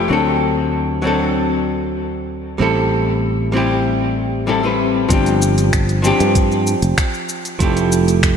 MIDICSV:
0, 0, Header, 1, 4, 480
1, 0, Start_track
1, 0, Tempo, 625000
1, 80, Time_signature, 4, 2, 24, 8
1, 6427, End_track
2, 0, Start_track
2, 0, Title_t, "Hollow-body jazz guitar"
2, 0, Program_c, 0, 26
2, 62, Note_on_c, 0, 54, 70
2, 73, Note_on_c, 0, 60, 65
2, 83, Note_on_c, 0, 62, 66
2, 96, Note_on_c, 0, 69, 84
2, 763, Note_off_c, 0, 54, 0
2, 769, Note_off_c, 0, 60, 0
2, 773, Note_off_c, 0, 62, 0
2, 780, Note_off_c, 0, 69, 0
2, 784, Note_on_c, 0, 54, 84
2, 797, Note_on_c, 0, 60, 76
2, 808, Note_on_c, 0, 62, 78
2, 820, Note_on_c, 0, 69, 89
2, 1964, Note_off_c, 0, 54, 0
2, 1971, Note_off_c, 0, 60, 0
2, 1976, Note_off_c, 0, 62, 0
2, 1982, Note_off_c, 0, 69, 0
2, 1983, Note_on_c, 0, 55, 77
2, 1991, Note_on_c, 0, 60, 70
2, 2003, Note_on_c, 0, 64, 70
2, 2014, Note_on_c, 0, 69, 85
2, 2683, Note_off_c, 0, 55, 0
2, 2688, Note_off_c, 0, 60, 0
2, 2694, Note_off_c, 0, 64, 0
2, 2699, Note_off_c, 0, 69, 0
2, 2704, Note_on_c, 0, 55, 82
2, 2714, Note_on_c, 0, 60, 77
2, 2726, Note_on_c, 0, 64, 77
2, 2738, Note_on_c, 0, 67, 92
2, 3409, Note_off_c, 0, 55, 0
2, 3414, Note_off_c, 0, 60, 0
2, 3420, Note_off_c, 0, 64, 0
2, 3426, Note_off_c, 0, 67, 0
2, 3432, Note_on_c, 0, 55, 80
2, 3438, Note_on_c, 0, 60, 73
2, 3445, Note_on_c, 0, 64, 72
2, 3450, Note_on_c, 0, 69, 93
2, 3530, Note_off_c, 0, 55, 0
2, 3533, Note_off_c, 0, 60, 0
2, 3536, Note_off_c, 0, 64, 0
2, 3539, Note_off_c, 0, 69, 0
2, 3558, Note_on_c, 0, 55, 60
2, 3564, Note_on_c, 0, 60, 57
2, 3569, Note_on_c, 0, 64, 57
2, 3575, Note_on_c, 0, 71, 69
2, 3889, Note_off_c, 0, 55, 0
2, 3892, Note_off_c, 0, 60, 0
2, 3895, Note_off_c, 0, 64, 0
2, 3898, Note_off_c, 0, 71, 0
2, 3906, Note_on_c, 0, 53, 81
2, 3916, Note_on_c, 0, 60, 75
2, 3929, Note_on_c, 0, 62, 74
2, 3939, Note_on_c, 0, 67, 92
2, 4605, Note_off_c, 0, 53, 0
2, 4610, Note_off_c, 0, 60, 0
2, 4616, Note_off_c, 0, 62, 0
2, 4622, Note_off_c, 0, 67, 0
2, 4626, Note_on_c, 0, 53, 89
2, 4637, Note_on_c, 0, 60, 86
2, 4648, Note_on_c, 0, 62, 85
2, 4658, Note_on_c, 0, 67, 102
2, 5805, Note_off_c, 0, 53, 0
2, 5811, Note_off_c, 0, 60, 0
2, 5816, Note_off_c, 0, 62, 0
2, 5821, Note_off_c, 0, 67, 0
2, 5829, Note_on_c, 0, 53, 85
2, 5839, Note_on_c, 0, 57, 79
2, 5850, Note_on_c, 0, 64, 80
2, 5859, Note_on_c, 0, 67, 89
2, 6427, Note_off_c, 0, 53, 0
2, 6427, Note_off_c, 0, 57, 0
2, 6427, Note_off_c, 0, 64, 0
2, 6427, Note_off_c, 0, 67, 0
2, 6427, End_track
3, 0, Start_track
3, 0, Title_t, "Fretless electric bass"
3, 0, Program_c, 1, 35
3, 80, Note_on_c, 1, 38, 81
3, 1977, Note_off_c, 1, 38, 0
3, 1997, Note_on_c, 1, 33, 88
3, 3895, Note_off_c, 1, 33, 0
3, 3919, Note_on_c, 1, 31, 106
3, 4692, Note_off_c, 1, 31, 0
3, 4765, Note_on_c, 1, 43, 84
3, 5173, Note_off_c, 1, 43, 0
3, 5241, Note_on_c, 1, 29, 93
3, 5317, Note_off_c, 1, 29, 0
3, 5839, Note_on_c, 1, 29, 98
3, 6427, Note_off_c, 1, 29, 0
3, 6427, End_track
4, 0, Start_track
4, 0, Title_t, "Drums"
4, 3919, Note_on_c, 9, 36, 108
4, 3919, Note_on_c, 9, 42, 58
4, 3921, Note_on_c, 9, 82, 45
4, 3996, Note_off_c, 9, 36, 0
4, 3996, Note_off_c, 9, 42, 0
4, 3998, Note_off_c, 9, 82, 0
4, 4042, Note_on_c, 9, 42, 31
4, 4044, Note_on_c, 9, 82, 22
4, 4119, Note_off_c, 9, 42, 0
4, 4121, Note_off_c, 9, 82, 0
4, 4161, Note_on_c, 9, 82, 73
4, 4238, Note_off_c, 9, 82, 0
4, 4284, Note_on_c, 9, 42, 44
4, 4286, Note_on_c, 9, 82, 32
4, 4361, Note_off_c, 9, 42, 0
4, 4363, Note_off_c, 9, 82, 0
4, 4400, Note_on_c, 9, 26, 102
4, 4400, Note_on_c, 9, 36, 101
4, 4400, Note_on_c, 9, 42, 57
4, 4402, Note_on_c, 9, 82, 43
4, 4477, Note_off_c, 9, 26, 0
4, 4477, Note_off_c, 9, 36, 0
4, 4477, Note_off_c, 9, 42, 0
4, 4479, Note_off_c, 9, 82, 0
4, 4525, Note_on_c, 9, 42, 31
4, 4527, Note_on_c, 9, 82, 20
4, 4601, Note_off_c, 9, 42, 0
4, 4603, Note_off_c, 9, 82, 0
4, 4642, Note_on_c, 9, 82, 79
4, 4718, Note_off_c, 9, 82, 0
4, 4764, Note_on_c, 9, 42, 48
4, 4766, Note_on_c, 9, 82, 34
4, 4841, Note_off_c, 9, 42, 0
4, 4843, Note_off_c, 9, 82, 0
4, 4879, Note_on_c, 9, 42, 55
4, 4880, Note_on_c, 9, 36, 99
4, 4881, Note_on_c, 9, 82, 44
4, 4956, Note_off_c, 9, 42, 0
4, 4957, Note_off_c, 9, 36, 0
4, 4958, Note_off_c, 9, 82, 0
4, 5005, Note_on_c, 9, 82, 22
4, 5082, Note_off_c, 9, 82, 0
4, 5121, Note_on_c, 9, 82, 78
4, 5198, Note_off_c, 9, 82, 0
4, 5241, Note_on_c, 9, 42, 48
4, 5243, Note_on_c, 9, 82, 36
4, 5318, Note_off_c, 9, 42, 0
4, 5320, Note_off_c, 9, 82, 0
4, 5359, Note_on_c, 9, 26, 110
4, 5359, Note_on_c, 9, 36, 102
4, 5359, Note_on_c, 9, 42, 55
4, 5361, Note_on_c, 9, 82, 41
4, 5435, Note_off_c, 9, 26, 0
4, 5435, Note_off_c, 9, 42, 0
4, 5436, Note_off_c, 9, 36, 0
4, 5437, Note_off_c, 9, 82, 0
4, 5484, Note_on_c, 9, 82, 23
4, 5560, Note_off_c, 9, 82, 0
4, 5598, Note_on_c, 9, 82, 77
4, 5675, Note_off_c, 9, 82, 0
4, 5722, Note_on_c, 9, 42, 44
4, 5724, Note_on_c, 9, 82, 31
4, 5799, Note_off_c, 9, 42, 0
4, 5801, Note_off_c, 9, 82, 0
4, 5840, Note_on_c, 9, 36, 106
4, 5840, Note_on_c, 9, 42, 54
4, 5842, Note_on_c, 9, 82, 47
4, 5916, Note_off_c, 9, 36, 0
4, 5916, Note_off_c, 9, 42, 0
4, 5918, Note_off_c, 9, 82, 0
4, 5965, Note_on_c, 9, 42, 31
4, 5967, Note_on_c, 9, 82, 24
4, 6042, Note_off_c, 9, 42, 0
4, 6044, Note_off_c, 9, 82, 0
4, 6083, Note_on_c, 9, 82, 83
4, 6160, Note_off_c, 9, 82, 0
4, 6206, Note_on_c, 9, 42, 45
4, 6208, Note_on_c, 9, 82, 36
4, 6283, Note_off_c, 9, 42, 0
4, 6285, Note_off_c, 9, 82, 0
4, 6320, Note_on_c, 9, 36, 99
4, 6321, Note_on_c, 9, 26, 101
4, 6321, Note_on_c, 9, 42, 57
4, 6323, Note_on_c, 9, 82, 46
4, 6397, Note_off_c, 9, 36, 0
4, 6398, Note_off_c, 9, 26, 0
4, 6398, Note_off_c, 9, 42, 0
4, 6400, Note_off_c, 9, 82, 0
4, 6427, End_track
0, 0, End_of_file